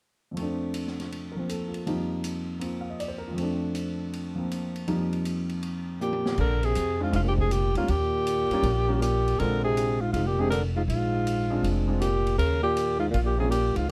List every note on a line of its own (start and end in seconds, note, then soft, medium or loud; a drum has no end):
0.31 1.85 F2 soft
0.31 1.35 F3 soft
0.37 1.87 A3 soft
0.37 1.37 C4 soft
0.37 ride soft
0.42 1.90 D4 soft
0.74 hi-hat pedal soft
0.74 ride medium
0.87 snare soft
1.00 snare soft
1.00 ride soft
1.12 ride soft
1.32 1.58 A#4 soft
1.36 1.85 F3 soft
1.36 1.86 A#3 soft
1.36 1.88 C4 soft
1.49 1.78 A4 soft
1.49 hi-hat pedal soft
1.49 ride soft
1.69 1.95 F4 soft
1.74 ride soft
1.86 3.29 F2 soft
1.86 3.33 F3 soft
1.86 3.38 G3 soft
1.86 2.58 A#3 soft
1.86 3.38 D#4 medium
1.86 ride soft
2.24 hi-hat pedal soft
2.24 ride medium
2.59 3.36 A#3 soft
2.59 3.37 C4 soft
2.59 3.26 F4 soft
2.59 ride soft
2.81 2.93 F5 soft
2.90 3.03 D#5 soft
3.00 3.17 D5 soft
3.00 hi-hat pedal soft
3.00 ride soft
3.08 3.25 C5 soft
3.18 3.30 A#4 soft
3.28 4.85 F2 soft
3.28 3.41 F4 soft
3.34 4.34 F3 soft
3.34 4.88 A3 soft
3.34 ride soft
3.39 4.37 C4 soft
3.39 4.91 D4 soft
3.75 hi-hat pedal medium
3.75 ride medium
4.13 ride soft
4.35 4.86 F3 soft
4.35 4.86 A#3 soft
4.35 4.89 C4 soft
4.51 hi-hat pedal soft
4.51 ride soft
4.76 ride soft
4.88 6.39 F2 medium
4.88 6.39 F3 soft
4.88 6.39 G3 medium
4.88 6.39 A#3 soft
4.88 6.39 D#4 medium
4.88 ride soft
5.13 ride soft
5.25 hi-hat pedal soft
5.25 ride soft
5.49 ride soft
5.63 ride medium
6.01 6.36 A#2 medium
6.01 6.37 G4 medium
6.01 hi-hat pedal soft
6.01 high tom soft
6.13 high tom soft
6.26 snare medium
6.38 6.74 A#1 medium
6.38 6.64 D3 medium
6.38 6.67 A#4 medium
6.38 kick medium
6.38 crash medium
6.63 7.01 C3 medium
6.63 7.02 G#4 medium
6.63 ride soft
6.75 7.12 F2 medium
6.75 hi-hat pedal medium
6.75 ride medium
7.00 7.11 G#2 medium
7.00 7.49 G#3 medium
7.00 7.49 C4 medium
7.00 7.49 D4 soft
7.00 7.50 F4 medium
7.00 7.15 F4 medium
7.12 7.72 F1 medium
7.12 7.18 G#2 medium
7.12 ride medium
7.16 7.21 F4 medium
7.23 7.30 A#2 medium
7.28 7.34 G4 medium
7.36 7.49 C3 medium
7.36 kick soft
7.41 7.53 G#4 medium
7.48 7.73 A#2 medium
7.48 hi-hat pedal medium
7.48 ride medium
7.52 7.77 G4 medium
7.74 7.88 D2 medium
7.74 7.88 G#2 medium
7.74 7.89 G3 medium
7.74 7.89 A#3 medium
7.74 7.89 C#4 medium
7.74 7.92 F4 medium
7.74 ride soft
7.78 7.89 F4 medium
7.86 8.47 D#2 medium
7.86 9.00 A#2 medium
7.86 ride soft
7.90 9.02 G4 medium
8.27 hi-hat pedal soft
8.27 ride medium
8.50 8.64 G3 medium
8.50 8.64 A#3 medium
8.50 8.64 C#4 medium
8.50 muted upright bass stroke soft
8.50 ride soft
8.54 8.65 F4 medium
8.63 9.35 A#1 medium
8.63 ride medium
8.88 9.01 G3 medium
8.88 9.00 A#3 medium
8.88 9.01 C#4 medium
8.88 9.01 F4 medium
9.00 9.41 A#2 medium
9.00 9.41 G4 medium
9.00 hi-hat pedal soft
9.00 ride medium
9.28 ride soft
9.39 10.11 A#1 medium
9.39 9.63 D3 medium
9.39 9.97 G#3 medium
9.39 9.97 C4 medium
9.39 9.98 D4 soft
9.39 9.98 F4 medium
9.39 9.64 A#4 medium
9.39 ride soft
9.64 10.03 C3 medium
9.64 10.03 G#4 medium
9.77 hi-hat pedal medium
9.77 ride medium
10.01 10.14 G#2 medium
10.01 10.12 F4 medium
10.13 10.86 F1 medium
10.13 10.28 G#2 medium
10.13 10.29 F4 medium
10.13 ride soft
10.27 10.41 A#2 medium
10.27 10.42 G4 medium
10.39 10.52 C3 medium
10.39 10.51 G#3 medium
10.39 10.51 C4 soft
10.39 10.51 D4 soft
10.39 10.51 G4 medium
10.39 10.50 G#4 medium
10.51 10.63 D3 medium
10.51 10.62 A#4 medium
10.51 hi-hat pedal medium
10.51 ride medium
10.76 10.82 G#2 medium
10.76 10.83 F4 medium
10.88 11.60 A#1 medium
10.88 11.74 G#2 medium
10.88 11.75 F4 medium
10.88 ride medium
11.27 hi-hat pedal medium
11.27 ride medium
11.50 11.86 G#3 medium
11.50 11.87 C4 soft
11.50 11.87 D4 medium
11.50 11.87 F4 medium
11.63 12.35 F1 medium
11.63 ride medium
11.88 12.00 G#3 medium
11.88 12.01 C4 medium
11.88 12.01 D4 medium
11.88 12.01 F4 medium
12.00 12.36 A#2 medium
12.00 12.37 G4 medium
12.00 hi-hat pedal soft
12.00 ride medium
12.27 ride soft
12.38 13.10 D#2 medium
12.38 12.62 C#3 medium
12.38 12.62 A#4 medium
12.38 ride medium
12.62 12.98 A#2 medium
12.62 12.99 G4 medium
12.77 hi-hat pedal soft
12.77 ride medium
12.99 13.05 G#2 medium
12.99 13.06 F4 medium
13.10 13.72 A#1 medium
13.10 13.17 A#2 medium
13.10 ride medium
13.14 13.20 F4 medium
13.24 13.36 A#2 medium
13.24 13.38 G4 medium
13.37 13.48 C3 medium
13.37 13.51 G3 medium
13.37 13.51 A#3 medium
13.37 13.50 G#4 medium
13.41 13.52 C#4 medium
13.41 13.52 F4 medium
13.49 13.76 A#2 medium
13.49 13.78 G4 medium
13.49 hi-hat pedal soft
13.49 ride medium
13.75 13.89 C#2 medium
13.75 13.87 G#2 medium
13.75 13.89 F4 medium
13.75 ride soft
13.88 13.91 A#2 medium